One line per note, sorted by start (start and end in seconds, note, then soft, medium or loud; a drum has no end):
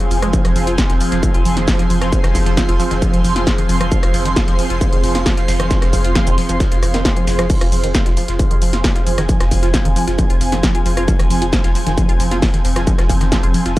0.00 7.49 F3 medium
0.00 0.06 F#3 medium
0.00 7.49 C4 medium
0.00 13.79 F4 medium
0.00 13.79 G#4 medium
0.00 13.79 C5 medium
0.00 1.55 G#5 medium
0.00 closed hi-hat medium
0.11 0.22 F1 loud
0.11 0.18 F3 medium
0.11 open hi-hat loud
0.11 shaker medium
0.22 0.33 F1 medium
0.22 0.29 G#3 loud
0.22 cross-stick medium
0.22 closed hi-hat medium
0.33 0.43 F3 medium
0.33 kick loud
0.33 closed hi-hat medium
0.33 shaker medium
0.45 0.55 F1 medium
0.45 0.51 F3 loud
0.45 cross-stick medium
0.45 closed hi-hat soft
0.45 closed hi-hat medium
0.56 0.67 F1 loud
0.56 0.62 F3 medium
0.56 open hi-hat loud
0.56 shaker medium
0.67 0.78 F1 medium
0.67 0.74 F4 medium
0.67 closed hi-hat soft
0.67 closed hi-hat medium
0.78 0.82 F3 medium
0.78 kick loud
0.78 snare loud
0.78 closed hi-hat medium
0.78 shaker medium
0.90 1.00 F1 medium
0.90 0.93 D#3 medium
0.90 snare medium
0.90 closed hi-hat medium
1.01 1.10 F3 medium
1.01 open hi-hat loud
1.01 shaker medium
1.12 1.23 F1 medium
1.12 1.18 F3 loud
1.12 snare soft
1.12 closed hi-hat medium
1.23 1.30 F3 medium
1.23 kick loud
1.23 closed hi-hat medium
1.23 shaker medium
1.34 1.45 F1 medium
1.34 1.41 F4 medium
1.34 closed hi-hat medium
1.45 1.56 F1 loud
1.45 1.49 F3 medium
1.45 open hi-hat loud
1.45 shaker medium
1.53 1.68 F1 medium
1.53 1.61 D#3 medium
1.53 8.72 C6 medium
1.53 snare medium
1.53 closed hi-hat medium
1.68 1.78 F3 medium
1.68 kick loud
1.68 snare loud
1.68 open hi-hat medium
1.68 shaker medium
1.79 1.85 F3 loud
1.79 snare soft
1.79 closed hi-hat medium
1.90 2.01 F1 loud
1.90 1.97 F3 medium
1.90 open hi-hat loud
1.90 shaker medium
2.01 2.12 F1 medium
2.01 2.08 F4 medium
2.01 cross-stick medium
2.01 snare medium
2.01 closed hi-hat medium
2.12 2.16 F3 medium
2.12 kick loud
2.12 closed hi-hat medium
2.12 shaker medium
2.24 2.34 F1 medium
2.24 2.28 D#3 medium
2.24 cross-stick medium
2.24 snare medium
2.24 closed hi-hat medium
2.35 2.46 F1 loud
2.35 2.45 F3 medium
2.35 kick medium
2.35 open hi-hat loud
2.35 shaker medium
2.46 2.57 F1 medium
2.46 2.53 F3 loud
2.46 snare medium
2.46 closed hi-hat medium
2.57 2.64 F3 medium
2.57 kick loud
2.57 snare loud
2.57 closed hi-hat medium
2.57 shaker medium
2.69 2.79 F1 medium
2.69 2.75 F4 medium
2.69 closed hi-hat medium
2.80 2.84 F3 medium
2.80 open hi-hat loud
2.80 shaker medium
2.91 3.02 F1 medium
2.91 2.95 D#3 medium
2.91 snare medium
2.91 closed hi-hat medium
3.02 3.12 F3 medium
3.02 kick loud
3.02 closed hi-hat medium
3.02 shaker medium
3.13 3.24 F1 medium
3.13 3.20 F3 loud
3.13 closed hi-hat medium
3.24 3.35 F1 loud
3.24 3.31 F3 medium
3.24 open hi-hat loud
3.24 shaker medium
3.36 3.47 F1 medium
3.36 3.42 F4 medium
3.36 snare medium
3.36 closed hi-hat medium
3.47 3.51 F3 medium
3.47 kick loud
3.47 snare loud
3.47 closed hi-hat medium
3.47 shaker medium
3.58 3.62 D#3 medium
3.58 closed hi-hat medium
3.69 3.80 F1 loud
3.69 3.79 F3 medium
3.69 open hi-hat loud
3.69 shaker medium
3.81 3.91 F1 medium
3.81 3.87 F3 loud
3.81 cross-stick loud
3.81 closed hi-hat medium
3.92 3.98 F3 medium
3.92 kick loud
3.92 closed hi-hat medium
3.92 shaker medium
4.03 4.13 F1 medium
4.03 4.09 F4 medium
4.03 cross-stick medium
4.03 closed hi-hat medium
4.03 closed hi-hat soft
4.14 4.25 F1 loud
4.14 4.18 F3 medium
4.14 open hi-hat loud
4.14 shaker medium
4.25 4.36 F1 medium
4.25 4.29 D#3 medium
4.25 closed hi-hat medium
4.25 closed hi-hat soft
4.36 4.46 F3 medium
4.36 kick loud
4.36 snare loud
4.36 closed hi-hat medium
4.36 shaker medium
4.48 4.59 F1 medium
4.48 4.54 F3 loud
4.48 snare medium
4.48 closed hi-hat medium
4.59 4.65 F3 medium
4.59 open hi-hat loud
4.59 shaker medium
4.70 4.81 F1 medium
4.70 4.77 F4 medium
4.70 snare soft
4.70 closed hi-hat medium
4.81 4.85 F3 medium
4.81 kick loud
4.81 closed hi-hat medium
4.81 shaker medium
4.92 5.03 F1 medium
4.92 4.96 D#3 medium
4.92 closed hi-hat medium
5.04 5.14 F1 loud
5.04 5.13 F3 medium
5.04 open hi-hat loud
5.04 shaker medium
5.15 5.26 F1 medium
5.15 5.21 F3 loud
5.15 snare medium
5.15 closed hi-hat medium
5.15 closed hi-hat soft
5.26 5.33 F3 medium
5.26 kick loud
5.26 snare loud
5.26 open hi-hat medium
5.26 shaker medium
5.37 5.44 F4 medium
5.37 snare soft
5.37 closed hi-hat medium
5.48 5.59 F1 loud
5.48 5.52 F3 medium
5.48 snare loud
5.48 open hi-hat loud
5.48 shaker medium
5.60 5.71 F1 medium
5.60 5.64 D#3 medium
5.60 cross-stick loud
5.60 snare medium
5.60 closed hi-hat medium
5.71 5.81 F3 medium
5.71 kick loud
5.71 snare loud
5.71 closed hi-hat medium
5.71 shaker medium
5.82 5.92 F1 medium
5.82 5.89 F3 loud
5.82 cross-stick medium
5.82 snare medium
5.82 closed hi-hat medium
5.93 6.04 F1 loud
5.93 6.00 F3 medium
5.93 kick medium
5.93 open hi-hat loud
5.93 shaker medium
6.04 6.15 F1 medium
6.04 6.11 F4 medium
6.04 closed hi-hat medium
6.04 closed hi-hat soft
6.15 6.19 F3 medium
6.15 kick loud
6.15 snare loud
6.15 closed hi-hat medium
6.15 shaker medium
6.27 6.38 F1 medium
6.27 6.31 D#3 medium
6.27 closed hi-hat medium
6.27 shaker medium
6.38 6.48 F3 medium
6.38 closed hi-hat soft
6.38 open hi-hat loud
6.49 6.60 F1 medium
6.49 6.56 F3 loud
6.49 closed hi-hat medium
6.49 shaker medium
6.60 6.67 F3 medium
6.60 kick loud
6.60 snare loud
6.60 closed hi-hat medium
6.60 shaker medium
6.72 6.82 F1 medium
6.72 6.78 F4 medium
6.72 snare soft
6.72 closed hi-hat medium
6.83 6.94 F1 loud
6.83 6.87 F3 loud
6.83 cross-stick medium
6.83 open hi-hat loud
6.83 shaker medium
6.94 7.05 F1 medium
6.94 7.00 D#3 loud
6.94 snare medium
6.94 snare soft
6.94 closed hi-hat medium
7.05 7.09 G#3 medium
7.05 kick loud
7.05 snare loud
7.05 closed hi-hat medium
7.05 shaker medium
7.16 7.26 F3 loud
7.16 closed hi-hat medium
7.27 7.38 F1 loud
7.27 7.31 F3 medium
7.27 snare loud
7.27 open hi-hat loud
7.27 shaker medium
7.39 7.50 F1 medium
7.39 7.45 F3 loud
7.39 cross-stick loud
7.39 snare soft
7.39 closed hi-hat medium
7.50 13.79 F3 medium
7.50 7.56 F3 medium
7.50 13.79 C4 medium
7.50 kick loud
7.50 closed hi-hat medium
7.50 crash medium
7.50 shaker medium
7.61 7.72 F1 medium
7.61 7.68 F4 medium
7.61 cross-stick medium
7.61 closed hi-hat medium
7.61 closed hi-hat soft
7.72 7.83 F1 loud
7.72 7.76 F3 medium
7.72 open hi-hat loud
7.72 shaker medium
7.84 7.94 F1 medium
7.84 7.88 D#3 medium
7.84 closed hi-hat medium
7.84 closed hi-hat soft
7.95 8.05 F3 medium
7.95 kick loud
7.95 snare loud
7.95 closed hi-hat medium
7.95 shaker medium
8.06 8.17 F1 medium
8.06 8.10 F4 medium
8.06 snare medium
8.06 closed hi-hat medium
8.17 8.24 F3 medium
8.17 open hi-hat loud
8.17 shaker medium
8.28 8.39 F1 medium
8.28 8.35 F4 medium
8.28 snare soft
8.28 closed hi-hat medium
8.39 8.43 F3 medium
8.39 kick loud
8.39 closed hi-hat medium
8.39 shaker medium
8.51 8.61 F1 medium
8.51 8.55 D#3 medium
8.51 closed hi-hat medium
8.62 8.73 F1 loud
8.62 8.72 F3 medium
8.62 open hi-hat loud
8.62 shaker medium
8.69 8.84 F1 medium
8.69 8.77 F4 medium
8.69 13.79 G#5 medium
8.69 snare medium
8.69 closed hi-hat medium
8.84 8.91 F3 medium
8.84 kick loud
8.84 snare loud
8.84 open hi-hat medium
8.84 shaker medium
8.96 9.02 F4 medium
8.96 snare soft
8.96 closed hi-hat medium
9.07 9.17 F1 loud
9.07 9.11 F3 medium
9.07 open hi-hat loud
9.07 shaker medium
9.18 9.29 F1 medium
9.18 9.22 D#3 medium
9.18 cross-stick medium
9.18 snare medium
9.18 closed hi-hat medium
9.29 9.39 F3 medium
9.29 kick loud
9.29 closed hi-hat medium
9.29 shaker medium
9.40 9.51 F1 medium
9.40 9.44 F4 medium
9.40 cross-stick medium
9.40 snare medium
9.40 closed hi-hat medium
9.51 9.62 F1 loud
9.51 9.58 F3 medium
9.51 kick medium
9.51 open hi-hat loud
9.51 shaker medium
9.63 9.74 F1 medium
9.63 9.69 F4 medium
9.63 snare medium
9.63 closed hi-hat medium
9.74 9.78 F3 medium
9.74 kick loud
9.74 snare loud
9.74 closed hi-hat medium
9.74 shaker medium
9.85 9.96 F1 medium
9.85 9.89 D#3 medium
9.85 closed hi-hat medium
9.96 10.06 F3 medium
9.96 open hi-hat loud
9.96 shaker medium
10.08 10.18 F1 medium
10.08 10.11 F4 medium
10.08 snare medium
10.08 closed hi-hat medium
10.19 10.25 F3 medium
10.19 kick loud
10.19 closed hi-hat medium
10.19 shaker medium
10.30 10.40 F1 medium
10.30 10.36 F4 medium
10.30 closed hi-hat medium
10.41 10.52 F1 loud
10.41 10.45 F3 medium
10.41 open hi-hat loud
10.41 shaker medium
10.52 10.63 F1 medium
10.52 10.56 D#3 medium
10.52 snare medium
10.52 closed hi-hat medium
10.63 10.73 F3 medium
10.63 kick loud
10.63 snare loud
10.63 closed hi-hat medium
10.63 shaker medium
10.75 10.78 F4 medium
10.75 closed hi-hat medium
10.86 10.96 F1 loud
10.86 10.92 F3 medium
10.86 open hi-hat loud
10.86 shaker medium
10.97 11.08 F1 medium
10.97 11.03 F4 medium
10.97 cross-stick medium
10.97 closed hi-hat medium
11.08 11.12 F3 medium
11.08 kick loud
11.08 closed hi-hat medium
11.08 shaker medium
11.19 11.30 F1 medium
11.19 11.23 D#3 medium
11.19 cross-stick medium
11.19 closed hi-hat medium
11.19 closed hi-hat soft
11.30 11.41 F1 loud
11.30 11.40 F3 medium
11.30 open hi-hat loud
11.30 shaker medium
11.42 11.53 F1 medium
11.42 11.46 F4 medium
11.42 closed hi-hat soft
11.42 closed hi-hat medium
11.53 11.59 F3 medium
11.53 kick loud
11.53 snare loud
11.53 closed hi-hat medium
11.53 shaker medium
11.64 11.75 F1 medium
11.64 11.71 F4 medium
11.64 snare medium
11.64 closed hi-hat medium
11.75 11.79 F3 medium
11.75 open hi-hat loud
11.75 shaker medium
11.86 11.97 F1 medium
11.86 11.90 D#3 medium
11.86 snare soft
11.86 closed hi-hat medium
11.98 12.07 F3 medium
11.98 kick loud
11.98 closed hi-hat medium
11.98 shaker medium
12.09 12.19 F1 medium
12.09 12.13 F4 medium
12.09 closed hi-hat medium
12.20 12.31 F1 loud
12.20 12.27 F3 medium
12.20 open hi-hat loud
12.20 shaker medium
12.31 12.42 F1 medium
12.31 12.38 F4 medium
12.31 snare medium
12.31 closed hi-hat medium
12.42 12.46 F3 medium
12.42 kick loud
12.42 snare loud
12.42 open hi-hat medium
12.42 shaker medium
12.54 12.58 D#3 medium
12.54 snare soft
12.54 closed hi-hat medium
12.65 12.75 F1 loud
12.65 12.75 F3 medium
12.65 open hi-hat loud
12.65 shaker medium
12.76 12.87 F1 medium
12.76 12.80 F4 medium
12.76 cross-stick medium
12.76 snare medium
12.76 closed hi-hat medium
12.87 12.94 F3 medium
12.87 kick loud
12.87 closed hi-hat medium
12.87 shaker medium
12.98 13.09 F1 medium
12.98 13.05 F4 medium
12.98 cross-stick medium
12.98 snare medium
12.98 closed hi-hat medium
13.09 13.20 F1 loud
13.09 13.14 F3 medium
13.09 kick medium
13.09 open hi-hat loud
13.09 shaker medium
13.21 13.32 F1 medium
13.21 13.25 D#3 medium
13.21 snare medium
13.21 closed hi-hat medium
13.32 13.42 F3 medium
13.32 kick loud
13.32 snare loud
13.32 closed hi-hat medium
13.32 shaker medium
13.43 13.54 F1 medium
13.43 13.47 F4 medium
13.43 closed hi-hat medium
13.54 13.61 F3 medium
13.54 open hi-hat loud
13.54 shaker medium
13.66 13.76 F1 medium
13.66 13.72 F4 medium
13.66 snare medium
13.66 closed hi-hat medium